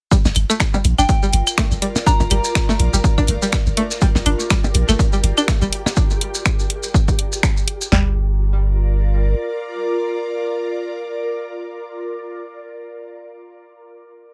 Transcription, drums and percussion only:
0.11 kick loud
0.11 closed hi-hat medium
0.11 maracas medium
0.25 snare soft
0.25 percussion blips medium
0.25 maracas soft
0.35 closed hi-hat medium
0.35 claves medium
0.50 claves medium
0.50 maracas medium
0.60 finger snap loud
0.60 kick loud
0.60 snare loud
0.60 closed hi-hat medium
0.60 maracas medium
0.74 percussion blips medium
0.74 maracas soft
0.84 closed hi-hat medium
0.98 claves medium
0.98 maracas medium
1.09 kick loud
1.09 closed hi-hat medium
1.09 maracas medium
1.23 maracas soft
1.33 closed hi-hat medium
1.47 closed hi-hat soft
1.47 claves medium
1.47 maracas medium
1.58 finger snap loud
1.58 kick loud
1.58 snare loud
1.58 closed hi-hat medium
1.58 maracas medium
1.71 maracas soft
1.82 closed hi-hat loud
1.82 closed hi-hat medium
1.82 claves medium
1.96 snare medium
1.96 percussion blips medium
1.96 maracas medium
2.06 kick loud
2.06 closed hi-hat medium
2.06 maracas medium
2.20 closed hi-hat soft
2.20 percussion blips medium
2.20 maracas soft
2.30 closed hi-hat medium
2.30 closed hi-hat loud
2.30 claves medium
2.44 maracas medium
2.55 finger snap loud
2.55 kick loud
2.55 snare loud
2.55 closed hi-hat medium
2.55 maracas medium
2.69 snare soft
2.69 percussion blips medium
2.69 maracas soft
2.79 closed hi-hat medium
2.94 maracas medium
3.04 kick loud
3.04 closed hi-hat loud
3.04 maracas medium
3.18 kick medium
3.18 claves medium
3.18 maracas soft
3.27 closed hi-hat medium
3.42 closed hi-hat soft
3.42 maracas medium
3.52 finger snap loud
3.52 kick loud
3.52 snare loud
3.52 closed hi-hat medium
3.52 maracas medium
3.67 maracas soft
3.77 closed hi-hat loud
3.77 closed hi-hat medium
3.91 snare soft
3.91 maracas medium
4.01 kick loud
4.01 closed hi-hat medium
4.01 maracas medium
4.15 snare medium
4.15 percussion blips medium
4.15 maracas soft
4.26 closed hi-hat medium
4.26 closed hi-hat loud
4.26 claves medium
4.40 maracas medium
4.50 finger snap loud
4.50 kick loud
4.50 snare loud
4.50 closed hi-hat medium
4.50 claves medium
4.50 maracas medium
4.64 percussion blips medium
4.64 maracas soft
4.74 closed hi-hat medium
4.74 closed hi-hat loud
4.89 claves medium
4.89 maracas medium
4.99 kick loud
4.99 closed hi-hat medium
4.99 maracas medium
5.13 maracas soft
5.24 closed hi-hat medium
5.24 closed hi-hat loud
5.37 closed hi-hat soft
5.37 claves medium
5.37 maracas medium
5.48 finger snap medium
5.48 kick loud
5.48 snare loud
5.48 closed hi-hat medium
5.48 maracas medium
5.62 maracas soft
5.73 closed hi-hat loud
5.73 closed hi-hat medium
5.86 snare medium
5.86 percussion blips medium
5.86 claves medium
5.86 maracas medium
5.96 kick loud
5.96 maracas medium
6.10 maracas soft
6.21 closed hi-hat loud
6.35 maracas medium
6.46 finger snap medium
6.46 kick loud
6.46 maracas medium
6.59 maracas soft
6.70 closed hi-hat medium
6.83 maracas medium
6.94 kick loud
6.94 maracas medium
7.08 kick medium
7.08 maracas soft
7.19 closed hi-hat loud
7.33 maracas medium
7.43 finger snap medium
7.43 kick loud
7.43 maracas medium
7.57 maracas soft
7.68 closed hi-hat loud
7.81 maracas medium
7.92 snare loud
7.92 floor tom loud

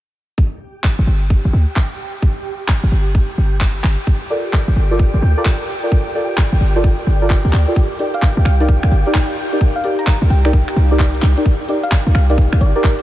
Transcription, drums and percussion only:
0.38 kick loud
0.84 kick loud
0.84 clap loud
1.30 kick loud
1.76 kick loud
1.76 clap loud
2.22 kick loud
2.68 kick loud
2.68 clap loud
3.15 kick loud
3.61 kick loud
3.61 clap loud
3.84 clap medium
4.07 kick loud
4.53 kick loud
4.53 clap loud
4.99 kick loud
5.45 kick loud
5.45 clap loud
5.92 kick loud
6.38 kick loud
6.38 clap loud
6.84 kick loud
7.30 kick loud
7.30 clap loud
7.53 clap medium
7.76 kick loud
7.99 open hi-hat medium
8.14 closed hi-hat medium
8.22 kick loud
8.22 clap loud
8.45 finger snap soft
8.45 open hi-hat medium
8.60 closed hi-hat medium
8.69 kick loud
8.83 finger snap soft
8.83 closed hi-hat soft
8.91 open hi-hat medium
9.06 open hi-hat medium
9.15 kick loud
9.15 clap loud
9.29 closed hi-hat soft
9.38 open hi-hat medium
9.53 closed hi-hat medium
9.61 kick loud
9.84 open hi-hat loud
9.99 closed hi-hat medium
10.07 kick loud
10.07 clap loud
10.30 open hi-hat loud
10.45 finger snap soft
10.45 closed hi-hat medium
10.53 kick loud
10.68 finger snap soft
10.68 closed hi-hat soft
10.76 open hi-hat loud
10.91 open hi-hat medium
10.99 kick loud
10.99 clap loud
11.14 closed hi-hat soft
11.22 clap medium
11.22 open hi-hat medium
11.37 closed hi-hat medium
11.46 kick loud
11.69 open hi-hat loud
11.83 closed hi-hat medium
11.92 kick loud
11.92 clap loud
12.15 finger snap soft
12.15 open hi-hat loud
12.30 closed hi-hat medium
12.38 kick loud
12.53 finger snap soft
12.53 closed hi-hat soft
12.61 open hi-hat loud
12.76 open hi-hat medium
12.84 kick loud
12.84 clap loud
12.99 closed hi-hat soft

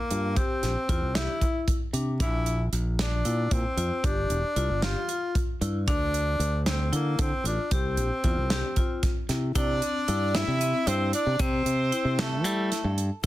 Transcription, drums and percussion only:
0.11 closed hi-hat medium
0.36 kick medium
0.36 closed hi-hat medium
0.63 snare soft
0.63 closed hi-hat medium
0.89 kick medium
0.89 closed hi-hat soft
1.15 snare medium
1.15 closed hi-hat medium
1.41 kick medium
1.41 closed hi-hat medium
1.68 kick medium
1.68 closed hi-hat medium
1.94 closed hi-hat medium
2.20 kick medium
2.20 closed hi-hat medium
2.46 closed hi-hat medium
2.73 closed hi-hat medium
2.99 snare medium
2.99 closed hi-hat medium
3.25 closed hi-hat medium
3.51 kick loud
3.51 closed hi-hat medium
3.78 closed hi-hat medium
4.04 kick loud
4.04 closed hi-hat medium
4.30 closed hi-hat medium
4.56 closed hi-hat soft
4.82 snare medium
4.82 closed hi-hat medium
5.09 closed hi-hat medium
5.35 kick loud
5.35 closed hi-hat medium
5.62 closed hi-hat medium
5.88 kick loud
5.88 closed hi-hat medium
6.14 closed hi-hat medium
6.40 closed hi-hat medium
6.66 snare medium
6.66 closed hi-hat medium
6.93 closed hi-hat medium
7.19 kick loud
7.19 closed hi-hat medium
7.45 closed hi-hat medium
7.71 kick medium
7.71 closed hi-hat medium
7.97 closed hi-hat medium
8.24 kick medium
8.24 closed hi-hat soft
8.50 snare medium
8.50 closed hi-hat medium
8.76 kick medium
8.76 closed hi-hat medium
9.03 kick loud
9.03 snare soft
9.03 closed hi-hat medium
9.29 snare soft
9.29 closed hi-hat medium
9.55 kick medium
9.55 closed hi-hat medium
9.55 shaker medium
9.82 closed hi-hat medium
9.82 shaker soft
10.08 closed hi-hat medium
10.08 shaker soft
10.35 snare loud
10.35 closed hi-hat medium
10.61 closed hi-hat medium
10.61 shaker soft
10.87 closed hi-hat medium
11.13 closed hi-hat medium
11.39 kick loud
11.39 closed hi-hat medium
11.39 shaker medium
11.66 closed hi-hat medium
11.66 shaker soft
11.92 closed hi-hat medium
11.92 shaker soft
12.19 snare medium
12.19 closed hi-hat medium
12.45 closed hi-hat medium
12.45 shaker medium
12.72 snare soft
12.72 closed hi-hat medium
12.98 closed hi-hat medium

